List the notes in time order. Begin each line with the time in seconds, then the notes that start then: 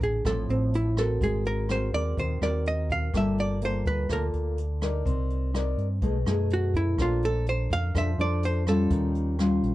Already playing: D3
0.01 A1 G#4, kick, closed hi-hat
0.25 A1 A2 F3 C4 E4 A4, kick, cross-stick, closed hi-hat
0.49 A1 C4, closed hi-hat
0.74 E4, closed hi-hat
0.97 C4 F#4 A4 A#4, cross-stick, closed hi-hat
1.21 G#1 G#3 G#4, kick, closed hi-hat
1.45 A#4, closed hi-hat
1.69 C4 F#4 A#4 C5, cross-stick, closed hi-hat
1.93 D#2 C4 F#4 A#4 D5, closed hi-hat
2.17 D#2 D#3 C5, kick, closed hi-hat
2.41 D#2 C4 F#4 A#4 D5, cross-stick, closed hi-hat
2.66 D#5, closed hi-hat
2.90 F5, kick, closed hi-hat
3.14 G1 G3 A#3 F4 A4 E5, kick, cross-stick, closed hi-hat
3.38 D5, closed hi-hat
3.61 A#3 F4 A4 C5, closed hi-hat
3.85 D2 B4, kick, closed hi-hat
4.09 D2 D3 A#3 F4 A4 A#4, kick, cross-stick, closed hi-hat
4.33 D2, closed hi-hat
4.58 closed hi-hat
4.82 D#4 A#4 D5, cross-stick, closed hi-hat
5.05 C2 C4, kick, closed hi-hat
5.30 closed hi-hat
5.54 D#4 A#4 D5, cross-stick, closed hi-hat
5.77 G2, closed hi-hat
6.02 B1 B2 A3 D#4 G#4, kick, closed hi-hat
6.26 F#2 A3 D#4 G#4, cross-stick, closed hi-hat
6.50 F#4, closed hi-hat
6.74 E4, kick, closed hi-hat
6.98 A#1 A#3 D4 F4 A4 C5, kick, cross-stick, closed hi-hat
7.22 A4, closed hi-hat
7.46 C5, closed hi-hat
7.70 F2 F5, kick, closed hi-hat
7.95 F2 F3 D4 A4 C5 E5, kick, cross-stick, closed hi-hat
8.18 F2 D4 A4 C5 D5, closed hi-hat
8.43 C5, closed hi-hat
8.67 G3 C#4 F4 A4, cross-stick, closed hi-hat
8.90 D#2 D#3, kick, closed hi-hat
9.15 closed hi-hat
9.39 G3 C#4 F4, cross-stick, closed hi-hat
9.62 A#1, closed hi-hat